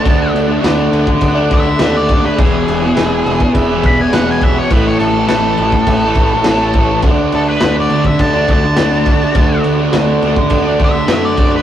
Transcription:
<<
  \new Staff \with { instrumentName = "Lead electric guitar" } { \time 4/4 \key d \lydian \tempo 4 = 103 a''8 r2 e''8 e''16 d''8 b'16 | gis'2 r8 b''16 gis''16 fis''16 gis''16 e''16 cis''16 | b'16 cis''16 a'8 a'2. | r8 a'16 b'8 d''8 e''16 a''8 a''4.~ |
a''8 r2 e''8 e''16 d''8 b'16 | }
  \new Staff \with { instrumentName = "Transistor combo organ" } { \time 4/4 \key d \lydian <a' d'' fis''>4 <a' d'' fis''>4 <a' d'' fis''>4 <a' d'' fis''>4 | <gis' b' e''>4 <gis' b' e''>4 <gis' b' e''>4 <gis' b' fis''>4 | <e' a' cis''>4 <e' a' b'>4 <e' a' b'>4 <e' a' cis''>4 | <fis' a' d''>4 <fis' a' d''>4 <fis' a' d''>4 <fis' a' d''>4 |
<fis' a' d''>4 <fis' a' d''>4 <fis' a' d''>4 <fis' a' d''>4 | }
  \new Staff \with { instrumentName = "Distorted electric guitar" } { \time 4/4 \key d \lydian <d a d'>8. <a d'>16 <d a d'>8 <d a d'>8. <a d'>16 <d a d'>8 <d a d'>8 <d a d'>8 | <e, b, e>8. <b, e>16 <e, b, e>8 <e, b, e>8. <b, e>16 <e, b, e>8 <e, b, e>8 <e, b, e>8 | <a, e a>8. <e a>16 <a, e a>8 <a, e a>8. <e a>16 <a, e a>8 <a, e a>8 <a, e a>8 | <d a d'>8. <a d'>16 <d a d'>8 <d a d'>8. <a d'>16 <d a d'>8 <d a d'>8 <d a d'>8 |
<d a d'>8. <a d'>16 <d a d'>8 <d a d'>8. <a d'>16 <d a d'>8 <d a d'>8 <d a d'>8 | }
  \new Staff \with { instrumentName = "Picked electric bass" } { \clef bass \time 4/4 \key d \lydian d,8 d,8 d,8 d,8 d,8 d,8 dis,4 | e,,8 e,,8 e,,8 e,,8 e,,8 e,,8 e,,4 | a,,8 a,,8 a,,8 a,,8 a,,8 a,,8 a,,4 | d,8 d,8 d,8 d,8 d,8 d,8 d,4 |
d,8 d,8 d,8 d,8 d,8 d,8 fis,4 | }
  \new DrumStaff \with { instrumentName = "Drums" } \drummode { \time 4/4 <cymc bd>8 cymc8 <cymc sn>8 cymc16 bd16 <cymc bd>8 <cymc bd>8 <cymc sn>8 <cymc bd>8 | <cymc bd>8 cymc8 <cymc sn>8 cymc16 bd16 <cymc bd>8 <cymc bd>8 <cymc sn>8 <cymc bd>8 | <cymc bd>8 cymc8 <cymc sn>8 cymc16 bd16 <cymc bd>8 <cymc bd>8 <cymc sn>8 <cymc bd>8 | <cymc bd>8 cymc8 <cymc sn>8 cymc16 bd16 <cymc bd>8 <cymc bd>8 <cymc sn>8 <cymc bd>8 |
<cymc bd>8 cymc8 <cymc sn>8 cymc16 bd16 <cymc bd>8 <cymc bd>8 <cymc sn>8 <cymc bd>8 | }
>>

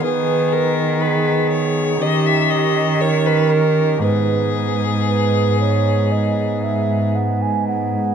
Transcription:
<<
  \new Staff \with { instrumentName = "Flute" } { \time 4/4 \key gis \minor \tempo 4 = 58 b'8 r8 gis'4 g'4 ais'4 | b'4 b'8 cis''8 dis''8 e''8 fis''16 gis''16 fis''8 | }
  \new Staff \with { instrumentName = "Violin" } { \time 4/4 \key gis \minor gis'8 ais'8 b'8 cis''8 dis''16 e''16 dis''8 cis''16 b'16 ais'8 | gis'2. r4 | }
  \new Staff \with { instrumentName = "Pipe organ" } { \time 4/4 \key gis \minor <dis b dis' gis'>2 <dis cis' dis' g'>2 | <gis, gis b dis' gis'>1 | }
  \new Staff \with { instrumentName = "Cello" } { \clef bass \time 4/4 \key gis \minor dis2 dis2 | gis,1 | }
>>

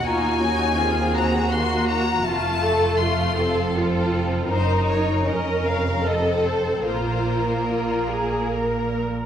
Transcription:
<<
  \new Staff \with { instrumentName = "Violin section" } { \time 3/4 \key bes \minor \tempo 4 = 78 aes''4. bes''8 c'''8 bes''8 | a''4 c'''4 r4 | c''8 des''8 ees''8 f''8 ees''8 c''8 | c''4 bes'4 r4 | }
  \new Staff \with { instrumentName = "Viola section" } { \time 3/4 \key bes \minor f'8 ees'8 f'8 ges'4. | f'8 a'8 f'8 a'8 f'4 | ees'4 bes'4 a'4 | f'4 f'8 aes'8 bes'4 | }
  \new Staff \with { instrumentName = "Violin section" } { \time 3/4 \key bes \minor << { ges'4 aes'4 ges'4 | f'2 a'4 | bes'4 bes'4 a'4 | bes'2~ bes'8. r16 | } \\ { ees'8 des'8 c'4 bes4 | a4 a8 c'8 c'4 | ees'4 des'4 c'4 | bes2~ bes8. r16 | } >> }
  \new Staff \with { instrumentName = "Cello section" } { \clef bass \time 3/4 \key bes \minor ees,2. | f,2. | ges,4 f,2 | bes,2~ bes,8. r16 | }
  \new Staff \with { instrumentName = "Double bass section" } { \clef bass \time 3/4 \key bes \minor ees,2. | f,,2. | ges,,4 f,,2 | bes,,2~ bes,,8. r16 | }
>>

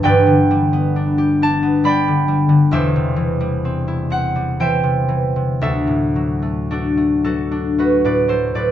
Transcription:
<<
  \new Staff \with { instrumentName = "Harp" } { \time 3/4 \key g \major \tempo 4 = 63 << { <g'' a''>4. a''8 b''4 | e''4. fis''8 g''4 | e''4 d''8 a'8 b'16 d''16 c''16 d''16 | } \\ { <g' b' d''>2 <d'' g''>4 | <g' c''>2 <c'' e''>4 | a'4 <fis' a'>8 fis'8 fis'16 b'16 a'16 b'16 | } >> }
  \new Staff \with { instrumentName = "Harp" } { \clef bass \time 3/4 \key g \major <g,, g, g>16 d16 g16 b16 d'16 g'16 d'16 b16 g16 d16 g16 d16 | <e,, e,>16 c16 e16 g16 c'16 e'16 c'16 g16 e16 c16 e16 c16 | d,16 a,16 fis16 a16 d'16 a16 fis16 d'16 a16 a,16 fis16 a,16 | }
>>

